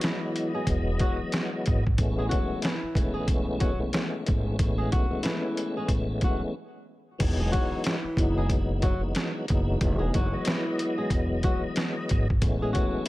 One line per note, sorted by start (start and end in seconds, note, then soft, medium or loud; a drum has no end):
0.00 1.84 E3 loud
0.00 0.52 E3 medium
0.00 1.84 F#3 medium
0.00 1.84 G#3 medium
0.00 1.84 B3 medium
0.00 0.51 E4 medium
0.00 1.85 D#5 loud
0.00 snare loud
0.00 closed hi-hat medium
0.36 closed hi-hat medium
0.54 0.67 G#3 medium
0.54 0.67 G#4 medium
0.67 0.97 E1 loud
0.67 kick medium
0.67 closed hi-hat medium
0.99 1.18 F#3 medium
0.99 1.18 F#4 medium
0.99 kick loud
0.99 closed hi-hat medium
1.32 snare loud
1.32 closed hi-hat medium
1.66 1.96 G#1 loud
1.66 kick medium
1.66 closed hi-hat medium
1.87 kick medium
1.97 2.28 A1 loud
1.97 2.75 E3 loud
1.97 2.75 G#3 medium
1.97 2.75 A3 medium
1.97 2.75 B3 medium
1.97 2.76 C#4 loud
1.97 kick loud
1.97 closed hi-hat medium
2.19 2.31 G#3 medium
2.19 2.29 G#4 medium
2.29 2.60 F#3 medium
2.29 2.59 F#4 medium
2.29 kick medium
2.29 closed hi-hat medium
2.62 3.12 E3 medium
2.62 3.11 E4 medium
2.62 snare loud
2.62 closed hi-hat medium
2.83 muted upright bass stroke soft
2.95 3.90 B1 medium
2.95 3.72 E3 medium
2.95 3.72 G#3 medium
2.95 3.73 A3 medium
2.95 3.73 B3 medium
2.95 3.73 C#4 loud
2.95 kick loud
2.95 closed hi-hat medium
3.14 3.27 G#3 medium
3.14 3.27 G#4 medium
3.28 kick medium
3.28 closed hi-hat medium
3.60 3.78 F#3 medium
3.60 3.78 F#4 medium
3.60 kick loud
3.60 closed hi-hat medium
3.79 3.91 E3 loud
3.79 3.91 G#3 medium
3.79 3.92 A3 medium
3.79 3.92 B3 medium
3.79 3.93 C#4 loud
3.92 4.23 E3 medium
3.92 4.24 G#3 medium
3.92 4.24 A3 medium
3.92 4.24 B3 medium
3.92 4.24 C#4 medium
3.92 snare loud
3.92 closed hi-hat medium
4.25 4.57 G#1 medium
4.25 4.56 E3 medium
4.25 4.56 G#3 medium
4.25 4.57 A3 medium
4.25 4.57 B3 medium
4.25 4.57 C#4 medium
4.25 kick medium
4.25 closed hi-hat medium
4.58 4.89 A1 loud
4.58 5.06 E3 loud
4.58 5.06 G#3 medium
4.58 5.06 A3 medium
4.58 5.07 B3 medium
4.58 5.07 C#4 loud
4.58 kick loud
4.58 closed hi-hat medium
4.78 4.91 G#3 medium
4.78 4.90 G#4 medium
4.92 5.10 B1 medium
4.92 5.22 F#3 medium
4.92 5.21 F#4 medium
4.92 kick medium
4.92 closed hi-hat medium
5.09 6.54 E3 medium
5.09 6.54 G#3 medium
5.09 6.55 A3 medium
5.09 6.55 B3 medium
5.09 6.55 C#4 loud
5.23 5.73 E3 medium
5.23 5.72 E4 medium
5.23 snare loud
5.23 closed hi-hat medium
5.57 closed hi-hat medium
5.77 5.89 G#3 medium
5.77 5.89 G#4 medium
5.88 6.19 A1 loud
5.88 kick medium
5.88 closed hi-hat medium
6.21 6.41 F#3 medium
6.21 6.40 F#4 medium
6.21 kick loud
6.21 closed hi-hat medium
7.18 7.50 E1 loud
7.18 7.96 E3 medium
7.18 7.96 F#3 medium
7.18 7.97 G#3 medium
7.18 7.97 B3 medium
7.18 7.97 D#4 loud
7.18 kick loud
7.18 closed hi-hat medium
7.18 crash loud
7.40 7.52 G#3 medium
7.40 7.52 G#4 medium
7.52 7.82 F#3 medium
7.52 7.82 F#4 medium
7.52 kick medium
7.52 closed hi-hat medium
7.84 8.35 E3 medium
7.84 8.34 E4 medium
7.84 snare loud
7.84 closed hi-hat medium
8.04 muted upright bass stroke soft
8.16 9.11 F#1 medium
8.16 8.94 E3 medium
8.16 8.94 F#3 medium
8.16 8.94 G#3 medium
8.16 8.95 B3 medium
8.16 8.95 D#4 loud
8.16 kick loud
8.16 closed hi-hat medium
8.38 8.50 G#3 medium
8.38 8.50 G#4 medium
8.49 kick medium
8.49 closed hi-hat medium
8.82 9.01 F#3 medium
8.82 9.00 F#4 medium
8.82 kick loud
8.82 closed hi-hat medium
9.01 9.13 E3 loud
9.01 9.13 F#3 medium
9.01 9.14 G#3 medium
9.01 9.15 B3 medium
9.01 9.15 D#4 loud
9.14 9.45 E3 medium
9.14 9.46 F#3 medium
9.14 9.46 G#3 medium
9.14 9.46 B3 medium
9.14 9.46 D#4 medium
9.14 snare loud
9.14 closed hi-hat medium
9.48 9.79 F#1 medium
9.48 9.78 E3 medium
9.48 9.79 F#3 medium
9.48 9.79 G#3 medium
9.48 9.79 B3 medium
9.48 9.79 D#4 medium
9.48 kick medium
9.48 closed hi-hat medium
9.80 10.11 E1 loud
9.80 10.27 E3 medium
9.80 10.28 F#3 medium
9.80 10.28 G#3 medium
9.80 10.28 B3 medium
9.80 10.29 D#4 loud
9.80 kick loud
9.80 closed hi-hat loud
9.99 10.12 G#3 medium
9.99 10.12 G#4 medium
10.14 10.31 F#1 medium
10.14 10.44 F#3 medium
10.14 10.44 F#4 medium
10.14 kick medium
10.14 closed hi-hat medium
10.31 12.27 E3 loud
10.31 12.27 F#3 medium
10.31 12.27 G#3 medium
10.31 12.28 B3 medium
10.31 12.28 D#5 loud
10.45 10.95 E3 medium
10.45 10.95 E4 medium
10.45 snare loud
10.45 closed hi-hat medium
10.79 closed hi-hat medium
10.98 11.11 G#3 medium
10.98 11.10 G#4 medium
11.10 11.40 E1 loud
11.10 kick medium
11.10 closed hi-hat medium
11.43 11.62 F#3 medium
11.43 11.61 F#4 medium
11.43 kick loud
11.43 closed hi-hat medium
11.76 snare loud
11.76 closed hi-hat medium
12.09 12.40 G#1 loud
12.09 kick medium
12.09 closed hi-hat medium
12.30 kick medium
12.41 12.71 A1 loud
12.41 13.08 E3 loud
12.41 13.08 G#3 medium
12.41 13.08 A3 medium
12.41 13.08 B3 medium
12.41 13.08 C#4 loud
12.41 kick loud
12.41 closed hi-hat loud
12.62 12.74 G#3 medium
12.62 12.73 G#4 medium
12.73 13.03 F#3 medium
12.73 13.03 F#4 medium
12.73 kick medium
12.73 closed hi-hat medium